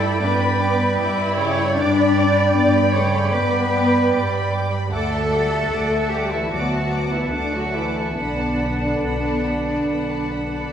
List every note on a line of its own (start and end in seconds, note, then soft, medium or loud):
0.00 0.11 G2 medium
0.00 0.16 A3 medium
0.00 0.19 E4 medium
0.00 0.20 A4 medium
0.00 0.19 D5 medium
0.00 1.73 D5 medium
0.00 1.73 G5 medium
0.00 0.19 B5 medium
0.00 1.73 B5 medium
0.00 0.21 B5 medium
0.20 0.89 G2 medium
0.20 1.21 B3 medium
0.20 0.59 D4 medium
0.20 0.38 B4 medium
0.20 1.38 B4 medium
0.20 0.38 G5 medium
0.20 0.39 D6 medium
0.39 0.59 D5 medium
0.39 0.59 B5 medium
0.39 0.60 B5 medium
0.58 0.99 B3 medium
0.58 0.78 B4 medium
0.58 0.78 G5 medium
0.58 0.79 D6 medium
0.79 0.99 D5 medium
0.79 0.99 B5 medium
0.97 1.68 G2 medium
0.97 1.76 E4 medium
0.97 1.16 B4 medium
0.97 1.16 G5 medium
0.97 1.17 D6 medium
1.18 1.38 D5 medium
1.18 1.38 B5 medium
1.38 1.76 C#3 medium
1.38 1.57 B4 medium
1.38 1.76 C#5 medium
1.38 1.57 G5 medium
1.38 1.58 D6 medium
1.57 1.77 D5 medium
1.57 1.77 B5 medium
1.76 2.46 G2 medium
1.76 2.93 D4 medium
1.76 2.54 D4 medium
1.76 1.95 B4 medium
1.76 2.94 D5 loud
1.76 4.75 D5 medium
1.76 1.95 G5 medium
1.76 4.75 G5 medium
1.76 4.60 B5 medium
1.76 1.95 D6 medium
1.96 2.16 D5 medium
1.96 2.15 B5 medium
1.96 2.16 B5 medium
2.17 2.35 B4 medium
2.17 2.35 G5 medium
2.17 2.36 D6 medium
2.36 2.55 D5 medium
2.36 2.55 B5 medium
2.54 3.24 G2 medium
2.54 2.94 B3 medium
2.54 2.72 B4 medium
2.54 2.72 G5 medium
2.54 2.73 D6 medium
2.75 2.94 D5 medium
2.75 2.94 B5 medium
2.93 3.33 C#3 medium
2.93 3.33 A3 medium
2.93 3.14 B4 medium
2.93 3.33 C#5 medium
2.93 3.14 G5 medium
2.93 3.13 D6 medium
3.14 3.34 D5 medium
3.14 3.33 B5 medium
3.32 4.03 G2 medium
3.32 4.12 B3 medium
3.32 4.52 B3 medium
3.32 3.51 B4 medium
3.32 4.52 B4 medium
3.32 3.51 G5 medium
3.32 3.51 D6 medium
3.51 3.72 D5 medium
3.51 3.72 B5 medium
3.51 3.73 B5 medium
3.72 3.92 B4 medium
3.72 3.92 G5 medium
3.72 3.93 D6 medium
3.92 4.12 D5 medium
3.92 4.12 B5 medium
4.11 4.82 G2 medium
4.11 4.92 G3 medium
4.11 4.30 B4 medium
4.11 4.30 G5 medium
4.11 4.31 D6 medium
4.31 4.51 D5 medium
4.31 4.51 B5 medium
4.31 4.52 B5 soft
4.51 4.71 B4 medium
4.51 4.71 G5 medium
4.51 4.72 D6 medium
4.71 4.91 D5 soft
4.71 4.91 B5 medium
4.71 4.92 B5 medium
4.91 5.62 D2 medium
4.91 5.31 A3 medium
4.91 6.07 A3 medium
4.91 6.07 A4 loud
4.91 5.10 D5 medium
4.91 7.83 E5 medium
4.91 5.10 F#5 medium
4.91 10.73 F#5 medium
4.91 10.73 A5 medium
4.91 5.11 D6 medium
5.13 5.32 D5 medium
5.13 5.32 E5 medium
5.13 5.32 A5 medium
5.31 5.71 G3 medium
5.31 5.51 D5 medium
5.31 5.52 F#5 soft
5.31 5.52 D6 soft
5.52 5.71 D5 soft
5.52 5.71 E5 soft
5.52 5.71 A5 soft
5.70 6.41 D2 medium
5.70 6.50 A3 medium
5.70 5.90 D5 medium
5.70 5.90 F#5 soft
5.70 5.90 D6 medium
5.92 6.10 D5 soft
5.92 6.11 E5 soft
5.92 6.12 A5 soft
6.10 6.31 G3 medium
6.10 6.30 G4 medium
6.10 6.31 D5 soft
6.10 6.31 F#5 soft
6.10 6.32 D6 soft
6.31 6.51 E3 medium
6.31 6.51 E4 medium
6.31 6.51 D5 soft
6.31 6.51 E5 soft
6.31 6.51 A5 soft
6.51 7.22 D2 medium
6.51 7.12 F#3 medium
6.51 7.32 B3 medium
6.51 7.12 F#4 medium
6.51 6.71 D5 soft
6.51 6.71 F#5 soft
6.51 6.70 D6 soft
6.72 6.92 D5 soft
6.72 6.92 E5 soft
6.72 6.92 A5 soft
6.91 7.12 D5 soft
6.91 7.12 F#5 soft
6.91 7.12 D6 soft
7.11 7.32 E3 medium
7.11 7.32 E4 medium
7.11 7.33 D5 soft
7.11 7.33 E5 soft
7.11 7.32 A5 soft
7.31 8.06 D2 medium
7.31 7.52 D3 medium
7.31 8.16 A3 medium
7.31 7.53 D4 medium
7.31 7.53 D5 soft
7.31 7.53 F#5 soft
7.31 7.52 D6 soft
7.53 7.74 F#3 medium
7.53 7.74 F#4 medium
7.53 7.75 D5 soft
7.53 7.75 E5 soft
7.53 7.75 A5 soft
7.74 8.16 E3 medium
7.74 8.17 E4 medium
7.74 7.96 D5 soft
7.74 7.97 F#5 soft
7.74 7.96 D6 soft
7.97 8.18 D5 soft
7.97 8.18 E5 soft
7.97 8.17 A5 soft
8.17 8.92 B1 medium
8.17 10.73 D3 medium
8.17 10.73 B3 medium
8.17 10.73 D4 medium
8.17 8.38 B4 soft
8.17 10.73 D5 soft
8.17 8.38 F#5 soft
8.17 8.36 B5 soft
8.39 8.60 D5 soft
8.39 8.60 A5 soft
8.39 8.60 B5 soft
8.59 8.82 B4 soft
8.59 8.82 F#5 soft
8.59 8.80 B5 soft
8.81 9.03 D5 soft
8.81 9.02 A5 soft
8.81 9.04 B5 soft
9.01 9.76 B1 medium
9.01 9.21 B5 soft
9.06 9.23 B4 soft
9.06 9.24 F#5 soft
9.23 9.45 D5 soft
9.23 9.44 A5 soft
9.23 9.45 B5 soft
9.44 9.67 B4 soft
9.44 9.67 F#5 soft
9.44 9.65 B5 soft
9.66 9.88 D5 soft
9.66 9.87 A5 soft
9.66 9.88 B5 soft
9.86 10.61 B1 soft
9.86 10.08 B4 soft
9.86 10.08 F#5 soft
9.86 10.08 B5 soft
10.10 10.30 D5 soft
10.10 10.31 A5 soft
10.10 10.30 B5 soft
10.31 10.51 B4 soft
10.31 10.52 F#5 soft
10.31 10.51 B5 soft
10.52 10.73 D5 soft
10.52 10.72 A5 soft
10.52 10.73 B5 soft